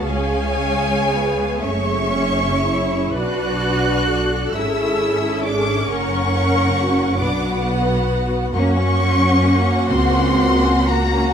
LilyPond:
<<
  \new Staff \with { instrumentName = "Violin section" } { \time 6/8 \key b \dorian \tempo 4. = 44 gis''4. cis'''4. | fis'''4. e'''4 d'''8 | cis'''4. d'''8 r4 | \key ges \lydian des'''4. c'''4 bes''8 | }
  \new Staff \with { instrumentName = "Violin section" } { \time 6/8 \key b \dorian << { eis''4. e''4. | d''4. e''4. | fis''4. fis''4. | \key ges \lydian ges''2. | } \\ { cis''4. cis''4. | b'8 b'8 a'2 | ais'4. b'4. | bes16 des'16 ges'16 des'16 bes16 des'16 ges'16 des'16 bes16 des'16 ges'16 des'16 | } >> }
  \new Staff \with { instrumentName = "Viola section" } { \time 6/8 \key b \dorian << { gis'2. | fis'4. gis'4. | ais'8 ais'8 fis'8 fis'4. | \key ges \lydian ges'2. | } \\ { cis'8 cis'8 b8 a8 cis'8 e'8 | d'4. cis'4.~ | cis'4. b4. | bes2. | } >> }
  \new Staff \with { instrumentName = "Cello section" } { \time 6/8 \key b \dorian gis4. cis'4. | fis'4. e'4 d'8 | cis'4. d'8 r4 | \key ges \lydian des'4. c'4 bes8 | }
  \new Staff \with { instrumentName = "Double bass section" } { \clef bass \time 6/8 \key b \dorian cis,4. fis,,4. | b,,4. gis,,4. | fis,,4. b,,4. | \key ges \lydian ges,4. des,4. | }
>>